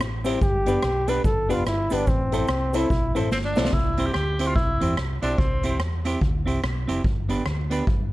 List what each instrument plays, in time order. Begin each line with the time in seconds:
0.00 fingered electric bass A1, cross-stick, cabasa
0.24 clean electric guitar C4 E4 G4 C5, upright piano C4 E4 G4 C5, closed hi-hat, cabasa
0.41 fingered electric bass G1, trombone G4, kick, cabasa
0.66 upright piano B3 D4 G4 B4, clean electric guitar B3 D4 G4 B4, closed hi-hat, cabasa
0.82 fingered electric bass B1, cross-stick, cabasa
1.07 clean electric guitar B3 D4 G4 B4, upright piano B3 D4 G4 B4, trombone B4, closed hi-hat, cabasa
1.24 fingered electric bass G1, trombone A4, kick, cabasa
1.49 fingered electric bass F1, clean electric guitar B3 D4 G4 B4, upright piano B3 D4 G4 B4, trombone F4, closed hi-hat, cabasa
1.66 fingered electric bass G1, trombone E4, cross-stick, cabasa
1.90 fingered electric bass G1, clean electric guitar B3 D4 G4 B4, upright piano B3 D4 G4 B4, closed hi-hat, cabasa
1.95 trombone D4
2.07 fingered electric bass A1, trombone C4, kick, cabasa
2.32 upright piano C4 E4 A4 C5, clean electric guitar C4 E4 A4 C5, closed hi-hat, cabasa
2.47 fingered electric bass C2, upright piano A4 C5, cross-stick, cabasa
2.73 upright piano C4 E4 A4 C5, clean electric guitar C4 E4 A4 C5, trombone E4, closed hi-hat, cabasa
2.90 fingered electric bass B1, kick, cabasa
3.15 fingered electric bass A1, upright piano C4 E4 A4 C5, clean electric guitar C4 E4 A4 C5, closed hi-hat, cabasa
3.32 fingered electric bass G1, tenor saxophone C4, snare, cabasa
3.45 tenor saxophone D4
3.55 fingered electric bass B1, upright piano C4 E4 A4 C5, clean electric guitar C4 E4 A4 C5, snare, cabasa
3.65 snare
3.73 fingered electric bass C2, tenor saxophone E4, kick
3.98 clean electric guitar C4 E4 G4 C5, closed hi-hat
4.06 tenor saxophone G4
4.13 fingered electric bass D2, tenor saxophone G4, cross-stick
4.39 clean electric guitar C4 E4 G4 C5, closed hi-hat
4.47 tenor saxophone F4
4.55 fingered electric bass C2, tenor saxophone E4, kick
4.81 fingered electric bass E2, clean electric guitar C4 E4 G4 C5, closed hi-hat
4.97 fingered electric bass C2, cross-stick
5.22 fingered electric bass B1, clean electric guitar C4 E4 G4 C5, tenor saxophone D4, closed hi-hat
5.38 fingered electric bass C2, tenor saxophone C4, kick
5.63 clean electric guitar C4 E4 G4 C5, closed hi-hat
5.80 fingered electric bass E2, cross-stick
6.05 clean electric guitar C4 E4 G4 C5, closed hi-hat
6.21 fingered electric bass D2, kick
6.46 fingered electric bass C2, clean electric guitar C4 E4 G4 C5, closed hi-hat
6.64 fingered electric bass B1, cross-stick
6.88 fingered electric bass F1, clean electric guitar C4 E4 G4 C5, closed hi-hat
7.04 fingered electric bass G1, kick
7.29 clean electric guitar B3 D4 G4 B4, closed hi-hat
7.46 fingered electric bass D2, cross-stick
7.70 clean electric guitar B3 D4 G4 B4, closed hi-hat
7.87 fingered electric bass G1, kick